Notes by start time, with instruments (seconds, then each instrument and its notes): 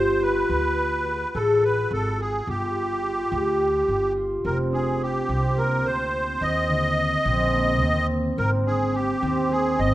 Already playing: upright bass G1, harp F4 G4, accordion C5
0.21 harp F4, accordion B4
0.49 upright bass D2, harp F#4
1.06 harp F#4
1.34 upright bass A1, harp G#4, accordion A4
1.62 harp F#4, accordion B4
1.91 upright bass G#1, accordion A4
2.18 harp F#4, accordion G#4
2.47 upright bass G1, harp F4, accordion G4
3.03 harp F4
3.31 upright bass D2, harp G4
3.59 harp F4
3.88 upright bass G1
4.15 harp F4
4.44 upright bass F1, harp C4, accordion A#4
4.72 harp D4, accordion G#4
5.02 accordion G4
5.29 upright bass C2, harp C4
5.57 harp A#3, accordion A#4
5.85 upright bass D2, harp C4, accordion C5
6.41 upright bass D#2, harp C4, accordion D#5
6.69 harp D3
7.25 upright bass A#1, harp C4
7.54 harp A#3
7.82 upright bass D#2, harp C4
8.38 upright bass G#1, harp C4, accordion A#4
8.66 harp D4, accordion G#4
8.95 accordion G4
9.22 upright bass D#2, harp C4
9.51 harp A#3, accordion G#4
9.79 upright bass G#1, harp C4, accordion D#5